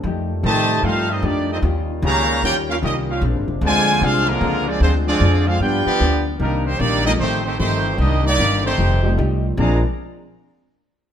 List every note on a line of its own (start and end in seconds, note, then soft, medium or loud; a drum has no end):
0.03 0.42 F2 medium
0.03 3.19 D#3 medium
0.03 0.31 F3 medium
0.03 1.61 G3 medium
0.03 1.61 A3 medium
0.03 0.32 A3 medium
0.03 0.32 D#4 medium
0.03 3.18 F4 medium
0.07 0.33 G4 medium
0.43 0.82 A2 medium
0.43 0.81 C3 loud
0.43 0.81 D#3 loud
0.43 0.71 F3 medium
0.43 0.81 A3 loud
0.43 0.71 A3 medium
0.43 0.72 D#4 medium
0.43 0.72 G4 medium
0.43 0.82 G4 loud
0.43 0.82 C5 loud
0.43 0.82 D#5 loud
0.43 0.82 A5 loud
0.83 1.22 G2 medium
0.83 1.11 F3 medium
0.83 1.09 A3 medium
0.83 1.11 A3 medium
0.83 1.09 C4 medium
0.83 1.10 D#4 medium
0.83 1.12 D#4 medium
0.83 1.09 F4 medium
0.83 1.12 G4 medium
0.83 1.10 A4 medium
0.83 1.10 C5 medium
0.83 1.10 F5 loud
1.10 1.24 A3 medium
1.10 1.24 C4 medium
1.10 1.24 D#4 medium
1.10 1.24 G4 medium
1.10 1.24 A4 medium
1.10 1.24 D#5 medium
1.23 1.62 F2 loud
1.23 1.50 F3 medium
1.23 1.51 A3 medium
1.23 1.50 A#3 medium
1.23 1.50 D4 medium
1.23 1.51 D#4 medium
1.23 1.50 D#4 medium
1.23 1.50 G4 medium
1.23 1.52 G4 medium
1.23 1.50 D5 medium
1.51 1.57 A3 medium
1.51 1.57 C4 medium
1.51 1.58 C4 medium
1.51 1.58 D#4 medium
1.51 1.58 G4 medium
1.51 1.58 A4 medium
1.51 1.58 D#5 medium
1.62 2.01 D#2 loud
1.62 1.90 D#3 medium
1.62 3.21 G3 medium
1.62 3.20 C#4 medium
1.62 1.90 C#4 medium
1.62 1.91 F4 medium
1.62 1.91 G4 medium
2.02 2.41 C#2 loud
2.02 2.40 C#3 loud
2.02 2.30 D#3 medium
2.02 2.41 G3 loud
2.02 2.41 A#3 loud
2.02 2.31 C#4 medium
2.02 2.31 F4 medium
2.02 2.31 G4 medium
2.06 2.42 G4 loud
2.06 2.42 C#5 loud
2.06 2.42 F5 loud
2.06 2.42 A#5 loud
2.42 2.81 D#2 medium
2.42 2.70 D#3 medium
2.42 2.55 A#3 medium
2.42 2.70 C#4 medium
2.42 2.55 C#4 medium
2.42 2.71 F4 medium
2.42 2.56 F4 medium
2.42 2.55 G4 medium
2.42 2.71 G4 medium
2.42 2.56 A#4 medium
2.42 2.56 C#5 medium
2.42 2.56 G5 loud
2.69 2.75 A#3 medium
2.69 2.75 C#4 medium
2.69 2.76 C#4 medium
2.69 2.76 F4 medium
2.69 2.76 G4 medium
2.69 2.77 A#4 medium
2.69 2.76 F5 medium
2.82 3.21 C2 loud
2.82 3.09 D#3 medium
2.82 2.94 G3 medium
2.82 2.94 A#3 medium
2.82 3.10 C#4 medium
2.82 2.95 C#4 medium
2.82 2.94 D#4 medium
2.82 3.10 F4 medium
2.82 2.95 G4 medium
2.82 3.10 G4 medium
2.82 2.95 A#4 medium
2.82 2.96 D#5 medium
3.07 3.21 A#3 medium
3.07 3.21 C#4 medium
3.07 3.22 C#4 medium
3.07 3.21 F4 medium
3.07 3.22 G4 medium
3.07 3.22 A#4 medium
3.07 3.22 F5 medium
3.21 3.35 A#1 loud
3.21 3.49 A#2 medium
3.21 4.79 C3 medium
3.21 3.50 G#3 medium
3.21 5.59 G#3 medium
3.21 4.80 A#3 medium
3.21 3.50 C4 medium
3.21 4.80 D4 medium
3.21 3.51 D4 medium
3.35 3.47 G#1 medium
3.48 3.60 F1 medium
3.61 4.00 D2 loud
3.61 3.89 A#2 medium
3.61 4.00 D3 loud
3.61 4.00 F3 loud
3.61 3.89 G#3 medium
3.61 4.00 G#3 loud
3.61 3.90 C4 medium
3.61 3.90 D4 medium
3.66 4.01 F4 loud
3.66 4.01 C5 loud
3.66 4.01 D5 loud
3.66 4.01 G#5 loud
4.01 4.40 C2 medium
4.01 4.28 A#2 medium
4.01 4.29 G#3 medium
4.01 4.28 G#3 loud
4.01 4.30 C4 medium
4.01 4.28 D4 medium
4.01 4.30 D4 medium
4.01 4.29 D4 loud
4.01 4.28 F4 medium
4.01 4.29 G#4 loud
4.01 4.29 C5 loud
4.01 4.29 F5 loud
4.28 4.68 D3 medium
4.28 4.67 F3 medium
4.28 4.68 G#3 medium
4.28 4.68 A#3 medium
4.28 4.68 D4 medium
4.28 4.67 F4 medium
4.28 4.68 A#4 loud
4.41 4.80 C#2 loud
4.41 4.69 A#2 medium
4.41 4.69 G#3 medium
4.41 4.69 C4 medium
4.41 4.70 D4 medium
4.68 4.80 F3 medium
4.68 4.80 G#3 medium
4.68 4.82 C4 medium
4.68 4.82 D4 medium
4.68 4.81 F4 medium
4.68 4.82 G#4 medium
4.68 4.82 D5 loud
4.80 5.19 D2 loud
4.80 5.08 D3 medium
4.80 6.40 D3 medium
4.80 4.93 F3 medium
4.80 4.93 G#3 medium
4.80 5.09 G#3 medium
4.80 4.94 G#3 medium
4.80 4.93 C4 medium
4.80 5.10 C4 medium
4.80 5.61 C4 medium
4.80 4.94 D4 medium
4.80 4.94 F4 medium
4.80 6.40 F4 medium
4.80 4.93 C5 medium
4.85 5.10 F4 medium
5.07 5.44 F3 medium
5.07 5.44 G#3 medium
5.07 5.45 C4 medium
5.07 5.44 D4 medium
5.07 5.45 F4 medium
5.07 5.45 G#4 medium
5.07 5.44 D5 loud
5.20 5.59 F2 loud
5.20 5.48 D3 medium
5.20 5.48 G#3 medium
5.20 5.49 C4 medium
5.20 5.49 F4 medium
5.47 5.61 G#3 medium
5.47 5.61 C4 medium
5.47 5.61 D4 medium
5.47 5.61 F4 medium
5.47 5.61 G#4 medium
5.47 5.61 C5 medium
5.47 5.61 F5 loud
5.60 5.84 G2 medium
5.60 5.88 G2 medium
5.60 5.88 F3 medium
5.60 6.39 G3 medium
5.60 6.39 B3 medium
5.60 5.85 B3 medium
5.60 5.89 B3 medium
5.60 5.85 D4 medium
5.60 5.89 D4 medium
5.60 5.86 F4 medium
5.60 6.22 G4 medium
5.60 6.23 B4 medium
5.60 5.86 D5 medium
5.60 6.23 G5 loud
5.86 6.23 F3 loud
5.86 6.23 B3 medium
5.86 6.24 B3 loud
5.86 6.23 D4 medium
5.86 6.24 F4 loud
5.86 6.24 G4 loud
5.86 6.24 D5 loud
5.86 muted upright bass stroke soft
5.99 6.39 D2 medium
5.99 6.27 G2 medium
5.99 6.27 F3 medium
5.99 6.28 B3 medium
5.99 6.28 D4 medium
6.38 6.78 C2 medium
6.38 6.67 C3 soft
6.38 6.63 D#3 medium
6.38 6.68 D#3 soft
6.38 6.63 G3 medium
6.38 6.64 G3 medium
6.38 6.64 A#3 medium
6.38 6.63 A#3 medium
6.38 6.63 C4 medium
6.38 6.64 D4 medium
6.38 6.63 D4 medium
6.38 6.64 D#4 medium
6.38 6.63 D#4 medium
6.38 6.64 A#4 medium
6.42 6.68 A#3 medium
6.42 6.69 D4 medium
6.65 6.80 D#3 medium
6.65 6.77 G3 medium
6.65 6.79 A#3 medium
6.65 6.80 C4 medium
6.65 6.79 D#4 medium
6.65 6.79 G4 medium
6.65 6.80 C5 loud
6.78 7.18 A#1 loud
6.78 7.07 C3 medium
6.78 7.07 D#3 medium
6.78 7.03 G3 loud
6.78 7.03 A#3 loud
6.78 7.05 A#3 loud
6.78 7.08 A#3 medium
6.78 7.05 D4 medium
6.78 7.06 D#4 loud
6.78 7.06 G4 medium
6.78 7.06 D5 loud
6.82 7.08 D4 medium
7.04 7.17 F3 medium
7.04 7.17 G3 medium
7.04 7.11 G3 medium
7.04 7.18 A3 medium
7.04 7.11 A#3 medium
7.04 7.12 A#3 loud
7.04 7.18 C4 medium
7.04 7.13 D4 loud
7.04 7.11 D#4 medium
7.04 7.18 D#4 medium
7.04 7.13 G4 loud
7.04 7.12 D#5 loud
7.19 7.58 A1 medium
7.19 7.43 D#3 medium
7.19 7.47 F3 medium
7.19 7.43 A3 medium
7.19 7.47 A3 medium
7.19 7.44 A3 medium
7.19 7.42 C4 medium
7.19 7.44 D#4 loud
7.19 7.48 D#4 medium
7.19 7.44 G4 medium
7.19 7.48 G4 medium
7.19 7.44 C5 loud
7.43 7.56 D#3 medium
7.43 7.56 A3 medium
7.43 7.59 A3 medium
7.43 7.56 C4 medium
7.43 7.59 D#4 medium
7.43 7.59 G4 medium
7.43 7.58 C5 loud
7.57 7.98 G1 loud
7.57 7.95 D#3 medium
7.57 7.86 F3 medium
7.57 7.95 A3 medium
7.57 7.87 A3 medium
7.57 7.97 A3 medium
7.57 7.95 C4 medium
7.57 7.97 D#4 medium
7.57 7.87 D#4 medium
7.57 7.97 G4 medium
7.57 7.97 C5 loud
7.62 7.88 G4 medium
7.97 8.37 C2 medium
7.97 8.26 C3 medium
7.97 8.26 D#3 medium
7.97 8.22 G3 medium
7.97 8.22 A#3 medium
7.97 8.27 A#3 medium
7.97 8.25 D4 loud
7.97 8.21 D#4 medium
7.97 8.25 G4 medium
7.97 8.25 D#5 loud
8.01 8.26 A#3 medium
8.01 8.28 D4 medium
8.22 8.61 G3 medium
8.22 8.61 A#3 medium
8.22 8.60 D#4 medium
8.22 8.63 G4 loud
8.27 8.63 A#3 medium
8.27 8.63 D#4 loud
8.27 8.63 D5 loud
8.39 8.77 G1 loud
8.39 8.66 C3 medium
8.39 8.66 D#3 medium
8.39 8.67 A#3 medium
8.39 8.67 D4 medium
8.63 9.13 D#3 medium
8.63 9.14 A3 medium
8.63 9.14 C4 medium
8.63 9.15 D#4 medium
8.63 9.15 G4 medium
8.63 9.15 C5 loud
8.67 9.16 A3 medium
8.77 9.17 F1 medium
8.77 9.05 F3 medium
8.77 9.06 A3 medium
8.77 9.06 D#4 medium
8.77 9.07 G4 medium
9.03 9.54 F3 medium
9.03 9.55 G3 medium
9.03 9.55 A3 medium
9.03 9.55 C4 medium
9.03 9.55 D#4 medium
9.17 9.57 C2 loud
9.17 9.45 F3 medium
9.17 9.45 A3 medium
9.17 9.46 D#4 medium
9.17 9.46 G4 medium
9.57 9.82 A#1 loud
9.57 9.81 A#2 medium
9.57 9.78 A#2 medium
9.57 9.81 F3 medium
9.57 9.81 G#3 loud
9.57 9.81 G#3 medium
9.57 9.79 G#3 medium
9.57 9.81 A#3 medium
9.57 9.81 C4 medium
9.57 9.79 C4 medium
9.57 9.82 D4 medium
9.57 9.81 D4 medium
9.57 9.79 D4 medium
9.57 9.82 G#4 medium
9.57 9.83 D5 medium
9.57 9.83 F5 medium
9.57 9.83 A#5 medium